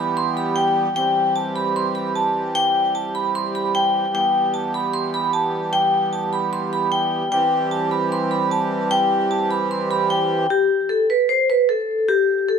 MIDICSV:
0, 0, Header, 1, 3, 480
1, 0, Start_track
1, 0, Tempo, 397351
1, 1163, Time_signature, 4, 2, 24, 8
1, 15206, End_track
2, 0, Start_track
2, 0, Title_t, "Vibraphone"
2, 0, Program_c, 0, 11
2, 0, Note_on_c, 0, 83, 77
2, 144, Note_off_c, 0, 83, 0
2, 204, Note_on_c, 0, 84, 92
2, 385, Note_off_c, 0, 84, 0
2, 446, Note_on_c, 0, 83, 84
2, 626, Note_off_c, 0, 83, 0
2, 673, Note_on_c, 0, 79, 86
2, 1129, Note_off_c, 0, 79, 0
2, 1161, Note_on_c, 0, 79, 102
2, 1613, Note_off_c, 0, 79, 0
2, 1639, Note_on_c, 0, 81, 74
2, 1822, Note_off_c, 0, 81, 0
2, 1879, Note_on_c, 0, 83, 78
2, 2062, Note_off_c, 0, 83, 0
2, 2128, Note_on_c, 0, 84, 83
2, 2308, Note_off_c, 0, 84, 0
2, 2356, Note_on_c, 0, 83, 77
2, 2540, Note_off_c, 0, 83, 0
2, 2603, Note_on_c, 0, 81, 81
2, 3054, Note_off_c, 0, 81, 0
2, 3082, Note_on_c, 0, 79, 112
2, 3534, Note_off_c, 0, 79, 0
2, 3563, Note_on_c, 0, 81, 79
2, 3744, Note_off_c, 0, 81, 0
2, 3804, Note_on_c, 0, 83, 78
2, 3985, Note_off_c, 0, 83, 0
2, 4049, Note_on_c, 0, 84, 82
2, 4228, Note_off_c, 0, 84, 0
2, 4289, Note_on_c, 0, 83, 85
2, 4468, Note_off_c, 0, 83, 0
2, 4528, Note_on_c, 0, 79, 99
2, 4977, Note_off_c, 0, 79, 0
2, 5011, Note_on_c, 0, 79, 100
2, 5458, Note_off_c, 0, 79, 0
2, 5481, Note_on_c, 0, 81, 81
2, 5663, Note_off_c, 0, 81, 0
2, 5729, Note_on_c, 0, 83, 73
2, 5908, Note_off_c, 0, 83, 0
2, 5961, Note_on_c, 0, 84, 86
2, 6144, Note_off_c, 0, 84, 0
2, 6209, Note_on_c, 0, 83, 85
2, 6388, Note_off_c, 0, 83, 0
2, 6442, Note_on_c, 0, 81, 82
2, 6894, Note_off_c, 0, 81, 0
2, 6920, Note_on_c, 0, 79, 114
2, 7372, Note_off_c, 0, 79, 0
2, 7402, Note_on_c, 0, 81, 74
2, 7584, Note_off_c, 0, 81, 0
2, 7644, Note_on_c, 0, 83, 81
2, 7825, Note_off_c, 0, 83, 0
2, 7885, Note_on_c, 0, 84, 90
2, 8066, Note_off_c, 0, 84, 0
2, 8128, Note_on_c, 0, 83, 86
2, 8307, Note_off_c, 0, 83, 0
2, 8356, Note_on_c, 0, 79, 85
2, 8811, Note_off_c, 0, 79, 0
2, 8841, Note_on_c, 0, 79, 102
2, 9293, Note_off_c, 0, 79, 0
2, 9318, Note_on_c, 0, 81, 77
2, 9501, Note_off_c, 0, 81, 0
2, 9559, Note_on_c, 0, 83, 77
2, 9742, Note_off_c, 0, 83, 0
2, 9809, Note_on_c, 0, 84, 85
2, 9988, Note_off_c, 0, 84, 0
2, 10039, Note_on_c, 0, 83, 78
2, 10222, Note_off_c, 0, 83, 0
2, 10285, Note_on_c, 0, 81, 81
2, 10735, Note_off_c, 0, 81, 0
2, 10762, Note_on_c, 0, 79, 109
2, 11214, Note_off_c, 0, 79, 0
2, 11244, Note_on_c, 0, 81, 77
2, 11425, Note_off_c, 0, 81, 0
2, 11483, Note_on_c, 0, 83, 76
2, 11665, Note_off_c, 0, 83, 0
2, 11729, Note_on_c, 0, 84, 84
2, 11908, Note_off_c, 0, 84, 0
2, 11967, Note_on_c, 0, 83, 85
2, 12147, Note_off_c, 0, 83, 0
2, 12203, Note_on_c, 0, 79, 97
2, 12654, Note_off_c, 0, 79, 0
2, 12688, Note_on_c, 0, 67, 92
2, 13137, Note_off_c, 0, 67, 0
2, 13159, Note_on_c, 0, 69, 76
2, 13342, Note_off_c, 0, 69, 0
2, 13408, Note_on_c, 0, 71, 71
2, 13588, Note_off_c, 0, 71, 0
2, 13640, Note_on_c, 0, 72, 80
2, 13823, Note_off_c, 0, 72, 0
2, 13888, Note_on_c, 0, 71, 81
2, 14068, Note_off_c, 0, 71, 0
2, 14121, Note_on_c, 0, 69, 80
2, 14573, Note_off_c, 0, 69, 0
2, 14598, Note_on_c, 0, 67, 109
2, 15052, Note_off_c, 0, 67, 0
2, 15083, Note_on_c, 0, 69, 74
2, 15206, Note_off_c, 0, 69, 0
2, 15206, End_track
3, 0, Start_track
3, 0, Title_t, "Accordion"
3, 0, Program_c, 1, 21
3, 0, Note_on_c, 1, 52, 86
3, 0, Note_on_c, 1, 55, 82
3, 0, Note_on_c, 1, 59, 81
3, 0, Note_on_c, 1, 67, 97
3, 1125, Note_off_c, 1, 55, 0
3, 1125, Note_off_c, 1, 59, 0
3, 1163, Note_on_c, 1, 60, 82
3, 1164, Note_on_c, 1, 55, 82
3, 4965, Note_off_c, 1, 60, 0
3, 5002, Note_on_c, 1, 59, 81
3, 8795, Note_off_c, 1, 52, 0
3, 8795, Note_off_c, 1, 67, 0
3, 8804, Note_off_c, 1, 59, 0
3, 8842, Note_on_c, 1, 52, 88
3, 8842, Note_on_c, 1, 60, 81
3, 8842, Note_on_c, 1, 67, 100
3, 12635, Note_off_c, 1, 55, 0
3, 12644, Note_off_c, 1, 52, 0
3, 12644, Note_off_c, 1, 60, 0
3, 12644, Note_off_c, 1, 67, 0
3, 15206, End_track
0, 0, End_of_file